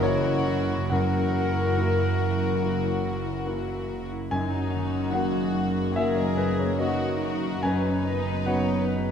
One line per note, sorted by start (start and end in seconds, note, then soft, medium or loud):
0.00 0.87 F#1 loud
0.00 0.87 F#2 medium
0.00 0.90 F#2 medium
0.00 2.60 C#3 medium
0.00 0.73 E3 medium
0.00 0.03 A#3 medium
0.00 1.11 A#3 medium
0.00 0.87 A#3 soft
0.00 0.03 E4 medium
0.00 0.67 E4 medium
0.00 0.89 E4 medium
0.00 0.87 E4 soft
0.00 0.47 E4 medium
0.00 0.04 F#4 medium
0.00 0.44 F#4 medium
0.00 0.89 F#4 medium
0.00 0.87 F#4 soft
0.00 0.73 A#4 medium
0.00 1.54 A#4 medium
0.00 0.88 A#4 medium
0.00 0.03 C#5 medium
0.00 2.50 C#5 medium
0.00 0.87 C#5 medium
0.00 0.93 D#5 loud
0.00 0.93 E5 loud
0.00 1.75 F#5 soft
0.23 1.97 E5 medium
0.45 2.18 F#4 medium
0.45 0.93 F#4 medium
0.68 1.32 E4 soft
0.90 4.07 F#1 medium
0.90 4.07 F#2 medium
0.90 4.30 F#2 medium
0.90 1.74 F#2 soft
0.90 3.94 E3 medium
0.90 4.07 E4 medium
0.90 4.07 F#4 medium
0.90 3.94 A#4 medium
0.90 4.07 A#4 medium
0.90 3.89 A#4 medium
0.90 3.42 F#5 medium
1.13 2.82 A#3 soft
1.34 2.39 E4 soft
1.55 3.25 A#4 soft
1.76 2.58 A#3 soft
1.76 2.58 E4 soft
1.76 2.58 F#4 soft
1.76 3.45 F#5 medium
1.98 3.66 E5 soft
2.19 3.87 F#4 soft
2.40 3.02 E4 soft
2.61 4.35 C#3 soft
2.61 3.43 A#3 soft
2.61 3.43 E4 soft
2.61 3.43 F#4 soft
2.83 4.52 A#3 soft
3.04 4.10 E4 soft
3.26 4.92 A#4 soft
3.46 4.27 A#3 soft
3.46 4.27 E4 soft
3.46 4.28 F#4 soft
3.46 5.13 F#5 soft
3.67 4.34 E5 soft
3.89 5.53 F#4 soft
4.11 4.35 E4 soft
4.30 7.61 F#1 medium
4.30 5.95 F#2 medium
4.30 5.11 F#2 medium
4.30 7.61 F#2 medium
4.30 7.60 D#3 medium
4.30 5.09 D#4 soft
4.30 4.70 D#4 soft
4.30 5.93 F#4 medium
4.30 7.60 A#4 medium
4.30 5.10 G#5 medium
4.53 6.16 A#3 soft
4.72 8.64 D#3 soft
4.72 5.13 C#4 medium
4.93 6.58 A#4 soft
5.12 5.93 A#3 soft
5.12 5.55 D#4 medium
5.12 5.94 D#4 soft
5.12 5.96 F#4 medium
5.12 5.94 F#4 soft
5.12 5.93 F#5 medium
5.12 6.79 F#5 medium
5.54 5.95 A#3 medium
5.54 7.20 F#4 soft
5.94 7.63 F#2 soft
5.94 6.78 A#3 medium
5.94 6.76 A#3 soft
5.94 6.76 D#4 soft
5.94 6.76 F#4 soft
5.94 6.79 G#4 soft
5.94 6.82 G#4 medium
5.94 6.79 A#4 medium
5.94 6.16 E5 medium
6.17 7.68 A#3 soft
6.17 6.37 D#5 medium
6.37 6.57 B4 medium
6.59 7.68 A#4 soft
6.59 6.78 C#5 medium
6.79 7.60 A#3 soft
6.79 7.64 D#4 medium
6.79 7.61 D#4 soft
6.79 7.20 F#4 medium
6.79 7.61 F#4 soft
6.79 7.64 F#4 soft
6.79 7.63 A#4 medium
6.79 7.60 D#5 medium
6.79 8.45 F#5 soft
7.21 7.64 F#4 medium
7.21 8.86 F#4 soft
7.63 9.11 F#1 medium
7.63 8.44 F#2 soft
7.63 9.11 F#2 medium
7.63 9.11 D#3 medium
7.63 8.05 C#4 medium
7.63 9.11 D#4 medium
7.63 8.07 B4 medium
7.63 9.11 B4 medium
7.63 8.42 G#5 medium
7.85 9.11 B3 soft
8.05 9.11 B3 medium
8.05 8.46 D#5 medium
8.46 9.11 B3 soft
8.46 9.11 D#4 soft
8.46 9.11 F#4 soft
8.46 8.86 C#5 medium
8.46 9.11 F#5 medium
8.87 9.11 F#4 soft
8.87 9.11 B4 medium